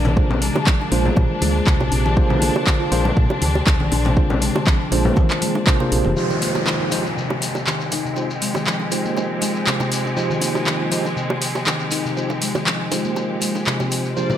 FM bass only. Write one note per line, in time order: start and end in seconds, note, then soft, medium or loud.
0.00 0.50 A#1 medium
0.92 1.11 A#1 loud
1.17 1.27 A#2 medium
1.42 1.61 D2 medium
1.67 1.77 D2 medium
1.80 1.89 A#1 medium
1.92 2.50 A#1 loud
2.92 3.11 A#1 loud
3.17 3.27 A#2 medium
3.42 3.61 D2 medium
3.67 3.77 D2 medium
3.81 3.89 A#1 medium
3.92 4.50 A#1 loud
4.92 5.11 A#1 loud
5.92 6.02 A#1 medium
6.06 6.14 F1 loud